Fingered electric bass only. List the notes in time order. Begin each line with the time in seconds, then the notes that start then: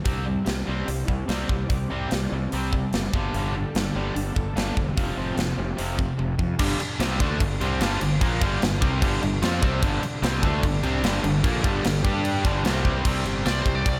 0.06 C2
0.47 C2
0.68 C2
0.88 C2
1.09 C2
1.29 C2
1.50 C2
1.70 C2
1.91 C2
2.12 C2
2.32 C2
2.53 C2
2.93 F#1
3.14 G1
3.34 G1
3.74 G1
3.95 G1
4.15 G1
4.36 G1
4.56 G1
4.77 E1
4.98 F1
5.17 F1
5.37 F1
5.58 F1
5.79 F1
6.19 F1
6.39 F2
6.60 G1
6.99 C2
7.20 D2
7.40 G1
7.61 C2
7.81 G1
8.02 G1
8.21 A#1
8.41 G1
8.62 G1
8.82 C2
9.02 G1
9.23 G1
9.42 F2
9.63 C2
9.83 G1
10.02 muted fingered electric bass stroke
10.22 C2
10.43 D2
10.63 G1
10.83 C2
11.03 G1
11.23 G1
11.44 A#1
11.64 G1
11.85 G1
12.05 G2
12.45 G1
12.65 C2
13.05 C2
13.25 G1
13.46 C2
13.66 C2
13.86 C2